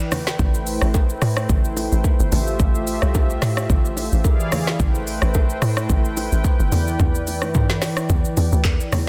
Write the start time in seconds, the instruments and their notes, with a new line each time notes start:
Already playing: analog synth pad E3 E4 B4 D5 G5
0.00 shaker
0.12 cross-stick, open hi-hat, low bongo, low conga, shaker
0.27 snare, shaker
0.39 log drum bass A1, analog synth pad A3 E4 C5, kick, low conga, shaker
0.54 shaker
0.67 open hi-hat, shaker
0.81 log drum bass A1, cross-stick, shaker
0.94 kick, high bongo, shaker
1.10 shaker
1.22 log drum bass A2, cross-stick, open hi-hat, shaker
1.37 cross-stick, shaker
1.49 log drum bass A1, kick, low conga, shaker
1.65 shaker
1.77 open hi-hat, low bongo, shaker
1.92 log drum bass A1, shaker
2.04 kick, high bongo, shaker
2.20 log drum bass G1, shaker
2.32 log drum bass A1, analog synth pad F4 G4 E5, open hi-hat, low bongo, low conga, shaker
2.47 shaker
2.60 log drum bass A1, kick, low conga, shaker
2.75 shaker
2.87 open hi-hat, shaker
3.02 log drum bass C2, cross-stick, shaker
3.15 kick, high bongo, shaker
3.30 shaker
3.42 log drum bass A2, cross-stick, snare, open hi-hat, shaker
3.57 cross-stick, shaker
3.69 log drum bass A1, kick, low conga, shaker
3.85 shaker
3.97 open hi-hat, low bongo, shaker
4.12 log drum bass A1, shaker
4.24 analog synth pad E3 E4 G#4 D5 F5, kick, high bongo, shaker
4.40 shaker
4.52 cross-stick, open hi-hat, low bongo, low conga, shaker
4.67 snare, shaker
4.79 log drum bass A1, analog synth pad A3 E4 B4 C5 G5, kick, low conga, shaker
4.95 shaker
5.07 open hi-hat, shaker
5.22 log drum bass A1, cross-stick, shaker
5.34 kick, high bongo, shaker
5.50 shaker
5.62 log drum bass A2, cross-stick, open hi-hat, shaker
5.77 cross-stick, shaker
5.90 log drum bass A1, kick, low conga, shaker
6.05 shaker
6.17 open hi-hat, low bongo, shaker
6.32 log drum bass A1, shaker
6.44 kick, high bongo, shaker
6.60 log drum bass G1, shaker
6.72 log drum bass E2, analog synth pad E3 D5, open hi-hat, low bongo, low conga, shaker
6.87 shaker
7.00 log drum bass E2, kick, low conga, shaker
7.15 shaker
7.27 open hi-hat, low bongo, shaker
7.42 log drum bass G2, cross-stick, low bongo, shaker
7.54 kick, mid tom, high bongo, shaker
7.70 snare, shaker
7.82 log drum bass E3, cross-stick, snare, open hi-hat, shaker
7.97 cross-stick, shaker
8.10 log drum bass E2, kick, low conga, shaker
8.25 shaker
8.37 log drum bass E2, open hi-hat, low bongo, shaker
8.52 log drum bass D2, shaker
8.65 log drum bass E2, kick, clap, high bongo, shaker
8.80 shaker
8.92 log drum bass E2, cross-stick, open hi-hat, low bongo, low conga, shaker